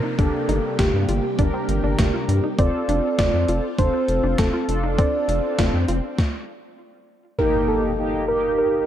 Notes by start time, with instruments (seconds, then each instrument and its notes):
Already playing: string machine C3 F3 A#3 C4 F4, soft synth lead A#4, downlifter
0.03 synth arpeggio sound D#4
0.19 analog synth bass G1, string machine G3 G4, analog polysynth A#3 D4 G4, synth arpeggio sound D4, soft synth lead A4, kick, closed hi-hat
0.49 analog synth bass G1, synth arpeggio sound D#4, closed hi-hat
0.79 analog synth bass G1, synth arpeggio sound F4, soft synth lead G4, kick, snare, closed hi-hat
0.94 analog synth bass G2
1.09 analog synth bass G1, synth arpeggio sound F4, soft synth lead G4, closed hi-hat
1.39 analog synth bass G1, analog polysynth D4 G4 A#4, synth arpeggio sound D4, kick, closed hi-hat
1.54 synth arpeggio sound C4
1.69 analog synth bass G1, closed hi-hat
1.83 analog synth bass G1, synth arpeggio sound D4
1.99 analog synth bass G1, kick, snare, closed hi-hat
2.14 synth arpeggio sound F4
2.28 analog synth bass G2, closed hi-hat
2.44 synth arpeggio sound D#4
2.58 analog synth bass F1, string machine C4 F4, analog polysynth C4 F4 A4, synth arpeggio sound C4, soft synth lead D5, kick, closed hi-hat, swell
2.89 analog synth bass F1, synth arpeggio sound D4, closed hi-hat
3.19 analog synth bass F1, synth arpeggio sound F4, soft synth lead D5, kick, snare, closed hi-hat
3.33 analog synth bass F2
3.48 analog synth bass F1, synth arpeggio sound F4, closed hi-hat
3.78 analog synth bass F1, analog polysynth C4 F4 A4, synth arpeggio sound D4, soft synth lead C5, kick, closed hi-hat
3.94 synth arpeggio sound C4
4.08 analog synth bass F1, closed hi-hat
4.24 analog synth bass F1, synth arpeggio sound D4
4.38 analog synth bass F1, soft synth lead A4, kick, snare, closed hi-hat
4.53 synth arpeggio sound F4
4.68 analog synth bass F1, analog polysynth D4 F4 A4, string machine D4 F4, closed hi-hat
4.83 synth arpeggio sound D#4
4.98 synth arpeggio sound C4, soft synth lead D5, kick, closed hi-hat
5.28 analog synth bass F1, synth arpeggio sound D4, closed hi-hat
5.59 analog synth bass F1, synth arpeggio sound F4, kick, snare, closed hi-hat
5.74 analog synth bass F2
5.88 analog synth bass F1, synth arpeggio sound F4, closed hi-hat
6.19 kick, snare
7.39 analog polysynth A#3 D#4 G4, soft synth lead A#4, impact
7.68 soft synth lead A4
7.99 analog polysynth A#3 D#4 G4
8.28 analog polysynth A#3 D#4 G4, soft synth lead A#4
8.58 soft synth lead A#4